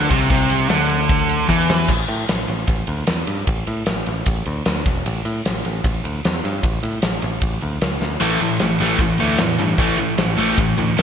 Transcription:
0.00 0.11 D3 loud
0.10 0.29 C2 medium
0.10 0.30 C3 loud
0.10 kick loud
0.10 ride medium
0.30 0.67 C2 loud
0.30 0.70 C3 loud
0.30 kick loud
0.30 ride loud
0.50 ride medium
0.69 1.45 D2 medium
0.69 1.48 D3 loud
0.69 snare loud
0.69 ride loud
0.89 ride medium
1.09 kick loud
1.09 ride loud
1.29 ride medium
1.49 1.86 E2 medium
1.49 1.88 E3 loud
1.49 kick medium
1.70 snare loud
1.88 2.04 A1 loud
1.88 kick loud
1.88 crash loud
2.08 2.24 A2 medium
2.08 ride medium
2.29 2.44 A1 medium
2.29 snare loud
2.29 ride medium
2.48 2.64 A1 medium
2.48 ride medium
2.67 2.83 A1 medium
2.67 kick loud
2.67 ride medium
2.87 3.03 D2 medium
2.87 ride medium
3.07 3.23 E2 medium
3.07 snare loud
3.07 ride medium
3.27 3.43 G2 medium
3.27 ride medium
3.47 3.63 A1 loud
3.47 kick loud
3.47 ride medium
3.67 3.82 A2 medium
3.67 ride medium
3.86 4.02 A1 medium
3.86 snare loud
3.86 ride medium
4.06 4.22 A1 medium
4.06 ride medium
4.26 4.42 A1 loud
4.26 kick loud
4.26 ride medium
4.46 4.62 D2 medium
4.46 ride medium
4.65 4.82 D2 medium
4.65 snare loud
4.65 ride medium
4.86 5.01 E1 medium
4.86 kick loud
4.86 snare soft
4.86 ride medium
5.06 5.21 A1 loud
5.06 ride medium
5.25 5.40 A2 medium
5.25 ride medium
5.45 5.61 A1 medium
5.45 snare loud
5.45 ride medium
5.65 5.80 A1 medium
5.65 ride medium
5.84 5.99 A1 loud
5.84 kick loud
5.84 ride medium
6.04 6.19 D2 medium
6.04 ride medium
6.25 6.40 E2 medium
6.25 snare loud
6.25 ride medium
6.44 6.59 G2 medium
6.44 snare soft
6.44 ride medium
6.63 6.78 A1 loud
6.63 kick loud
6.63 ride medium
6.83 6.98 A2 medium
6.83 ride medium
7.02 7.18 A1 medium
7.02 snare loud
7.02 ride medium
7.22 7.38 A1 medium
7.22 ride medium
7.42 7.57 A1 medium
7.42 kick loud
7.42 ride medium
7.61 7.77 D2 medium
7.61 ride medium
7.81 7.97 C#2 medium
7.81 snare loud
7.81 ride medium
8.01 8.16 D2 medium
8.01 snare medium
8.20 8.36 A1 loud
8.20 8.39 A2 medium
8.20 8.40 E3 medium
8.20 8.40 A3 medium
8.20 crash medium
8.20 ride medium
8.40 8.56 A2 medium
8.40 8.59 A2 medium
8.40 8.59 E3 medium
8.40 ride medium
8.59 8.76 A1 medium
8.59 8.78 A2 medium
8.59 8.78 E3 medium
8.59 snare loud
8.59 ride medium
8.79 8.96 A1 medium
8.79 8.99 A2 medium
8.79 8.99 E3 medium
8.79 8.99 A3 medium
8.79 ride medium
8.98 9.14 A1 loud
8.98 9.18 A2 medium
8.98 9.18 E3 medium
8.98 kick loud
8.98 ride medium
9.18 9.35 D2 medium
9.18 9.38 A2 loud
9.18 9.38 E3 medium
9.18 9.39 A3 loud
9.18 ride medium
9.38 9.55 E2 medium
9.38 9.57 A2 medium
9.38 9.57 E3 medium
9.38 snare loud
9.38 ride medium
9.58 9.74 G2 medium
9.58 9.77 A2 medium
9.58 9.77 E3 medium
9.58 ride medium
9.78 9.94 A1 loud
9.78 9.97 A2 medium
9.78 9.97 E3 medium
9.78 9.98 A3 medium
9.78 kick loud
9.78 ride medium
9.98 10.14 A2 medium
9.98 10.16 A2 medium
9.98 10.16 E3 medium
9.98 ride medium
10.18 10.33 A1 medium
10.18 10.36 A2 medium
10.18 10.36 E3 medium
10.18 snare loud
10.18 ride medium
10.38 10.53 A1 medium
10.38 10.56 A2 medium
10.38 10.56 E3 loud
10.38 10.57 A3 loud
10.38 ride medium
10.57 10.73 A1 loud
10.57 10.75 A2 medium
10.57 10.75 E3 medium
10.57 kick loud
10.57 ride loud
10.77 10.93 D2 medium
10.77 10.95 A2 medium
10.77 10.95 E3 medium
10.77 ride medium
10.98 11.02 F#1 medium
10.98 11.02 A2 medium
10.98 11.02 E3 loud
10.98 11.02 A3 loud
10.98 snare loud
10.98 ride medium

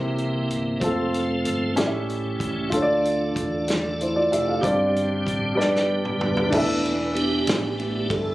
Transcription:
0.00 0.46 C2 medium
0.00 0.78 C3 medium
0.00 0.81 E3 medium
0.00 0.81 A#3 soft
0.00 0.81 A#3 medium
0.00 0.79 C4 medium
0.00 0.79 C4 soft
0.00 0.82 E4 medium
0.00 0.81 G4 medium
0.00 0.82 G4 medium
0.00 0.82 C5 medium
0.18 closed hi-hat soft
0.50 0.79 G1 medium
0.50 closed hi-hat medium
0.80 1.45 F1 medium
0.80 1.75 F3 medium
0.80 2.70 A3 soft
0.80 1.76 C4 medium
0.80 1.75 C4 soft
0.80 1.77 F4 medium
0.80 1.75 A4 medium
0.80 1.78 A4 medium
0.80 kick medium
0.80 closed hi-hat medium
1.14 closed hi-hat soft
1.45 1.75 G1 medium
1.45 closed hi-hat medium
1.76 2.37 A1 medium
1.76 2.69 A2 medium
1.76 2.71 E3 medium
1.76 2.72 C#4 medium
1.76 2.71 C#4 soft
1.76 2.72 E4 medium
1.76 2.71 G4 medium
1.76 2.73 G4 medium
1.76 2.71 A4 medium
1.76 1.85 D5 medium
1.76 snare medium
1.76 closed hi-hat medium
1.86 2.77 E5 medium
2.10 closed hi-hat soft
2.40 2.70 C#2 medium
2.40 kick medium
2.40 closed hi-hat medium
2.70 3.32 D2 medium
2.70 3.64 D3 medium
2.70 4.61 A3 medium
2.70 4.61 D4 soft
2.70 3.96 F4 medium
2.70 4.61 F4 medium
2.70 4.61 A4 medium
2.70 3.97 A4 medium
2.70 kick loud
2.70 closed hi-hat medium
2.77 2.81 C#5 medium
2.82 4.02 D5 medium
3.05 closed hi-hat soft
3.36 4.27 E2 medium
3.36 kick medium
3.36 closed hi-hat medium
3.68 snare medium
3.68 closed hi-hat medium
4.01 4.16 E4 soft
4.01 4.16 C5 medium
4.01 closed hi-hat soft
4.16 4.31 F4 soft
4.16 4.31 D5 medium
4.32 4.61 F1 medium
4.32 4.47 G4 medium
4.32 4.47 E5 medium
4.32 closed hi-hat medium
4.48 4.78 A4 soft
4.48 4.78 F5 soft
4.61 5.22 G1 medium
4.61 5.54 G2 medium
4.61 5.57 D3 medium
4.61 6.50 G3 medium
4.61 5.57 C4 soft
4.61 5.54 G4 medium
4.61 6.51 G4 medium
4.61 5.58 C5 medium
4.61 5.57 D5 medium
4.61 kick loud
4.61 closed hi-hat medium
4.96 closed hi-hat soft
5.26 5.55 A1 medium
5.26 kick medium
5.26 closed hi-hat medium
5.55 6.22 G1 medium
5.55 6.49 G2 medium
5.55 6.52 D3 medium
5.55 6.51 B3 soft
5.55 6.52 G4 medium
5.55 6.53 B4 medium
5.55 6.54 D5 medium
5.60 snare soft
5.76 snare soft
6.05 mid tom medium
6.20 6.51 F1 medium
6.20 6.51 D4 medium
6.20 7.12 B4 medium
6.20 mid tom medium
6.37 floor tom medium
6.50 7.44 E1 medium
6.50 7.44 E3 medium
6.50 6.94 A3 soft
6.50 6.95 B3 soft
6.50 8.35 D4 medium
6.50 6.95 D4 medium
6.50 8.35 E4 medium
6.50 8.35 A4 medium
6.50 kick loud
6.50 crash loud
6.55 8.35 B4 medium
6.55 8.35 E5 medium
6.85 ride soft
7.15 7.77 B3 medium
7.15 7.79 D4 medium
7.15 8.14 G4 loud
7.15 ride medium
7.47 8.07 A1 loud
7.47 snare loud
7.47 ride medium
7.78 8.07 A3 soft
7.78 8.08 B3 soft
7.78 8.08 D4 medium
7.78 ride soft
8.10 8.35 G1 medium
8.10 8.35 A4 medium
8.10 kick medium
8.10 ride medium

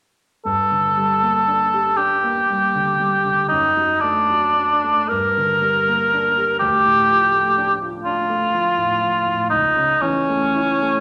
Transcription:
0.45 3.46 G2 soft
0.45 1.98 A4 soft
0.71 1.12 D3 soft
0.97 1.37 G3 soft
1.22 1.62 A#3 soft
1.47 1.88 D4 soft
1.74 2.14 G4 soft
1.97 2.38 D4 soft
1.97 3.48 G4 soft
2.23 2.64 A#3 soft
2.50 2.90 G3 soft
2.75 3.15 D3 soft
3.00 3.40 G3 soft
3.25 3.50 D3 soft
3.49 5.08 F#2 soft
3.49 4.02 D#4 soft
3.77 4.20 F#3 soft
4.01 4.47 A3 soft
4.01 5.10 D4 soft
4.30 4.74 F#3 soft
4.57 5.00 D4 soft
4.84 5.11 A3 soft
5.09 6.58 G2 soft
5.09 6.59 A#4 medium
5.38 5.78 D3 soft
5.62 6.02 G3 soft
5.88 6.28 A#3 soft
6.13 6.52 D4 soft
6.37 6.61 G4 soft
6.59 9.46 D2 soft
6.59 7.74 G4 medium
6.85 7.24 A2 soft
7.09 7.47 F3 soft
7.34 7.71 A3 soft
7.57 7.95 D4 soft
7.82 8.20 F4 soft
8.03 8.43 D4 soft
8.03 9.46 F4 soft
8.29 8.67 A3 soft
8.54 8.92 F3 soft
8.77 9.16 A2 soft
9.01 9.40 F3 soft
9.26 9.51 A2 soft
9.50 11.00 C#2 soft
9.50 10.03 D#4 medium
9.76 10.18 C#3 soft
10.01 10.45 E3 soft
10.01 11.00 C#4 medium
10.29 10.72 A3 soft
10.56 10.98 E4 soft
10.82 11.00 A3 soft

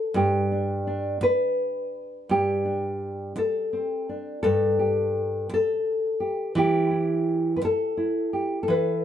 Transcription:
0.00 0.12 F#4 soft
0.00 0.51 A4 medium
0.00 0.16 B4 loud
0.14 1.20 G2 medium
0.14 1.22 G4 medium
0.52 0.86 D4 soft
0.87 2.64 D4 soft
1.21 2.30 B4 loud
1.21 muted nylon-string guitar stroke medium
2.29 3.35 G2 medium
2.29 4.09 G4 medium
2.65 3.38 D4 soft
3.36 4.09 A4 medium
3.36 muted nylon-string guitar stroke medium
3.73 4.45 C4 soft
4.09 4.42 D4 soft
4.43 5.49 G2 medium
4.43 5.50 A4 loud
4.79 6.20 G4 soft
5.49 muted nylon-string guitar stroke medium
5.54 6.58 A4 loud
6.20 6.58 G4 soft
6.55 7.62 E3 medium
6.55 7.56 G4 medium
6.91 7.96 E4 soft
7.56 7.63 B4 medium
7.61 8.33 A4 medium
7.61 muted nylon-string guitar stroke medium
7.97 8.65 E4 soft
8.33 8.62 G4 soft
8.63 9.05 A4 medium
8.68 9.05 E3 medium
8.68 9.05 B4 medium

